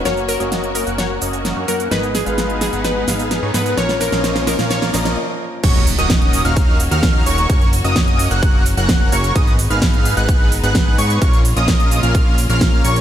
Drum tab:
CC |----------------|----------------|----------------|x---------------|
RD |----------------|----------------|----------------|x---x---x---x---|
HH |x-oxxxoxx-oxx-ox|x-oxxxoxx-oxx-ox|x-oxxxoxx-ox----|x-oxxxoxx-oxx-ox|
SH |xxxxx-xxx-xxx-xx|xxxxx-xxx-xxx-xx|xxxxxxxxxxxx----|xxxxx-xxx-xxx-xx|
SD |o---o---o---o---|o-o-o-o-o-o-o-o-|oooooooooooo----|----o-------o---|
BD |----------------|----------------|----------------|o---o---o---o---|

CC |----------------|----------------|----------------|
RD |x---x---x---x---|x---x---x---x---|x---x---x---x---|
HH |x-oxxxoxx-oxx-ox|x-oxxxoxx-oxx-ox|xxoxxxoxx-oxx-ox|
SH |xxxxx-xxx-xxx-xx|xxxxx-xxx-xxx-xx|xxxxxxxxx-xxx-xx|
SD |----o-------o---|----o-------o---|----o-------o---|
BD |o---o---o---o---|o---o---o---o---|o---o---o---o---|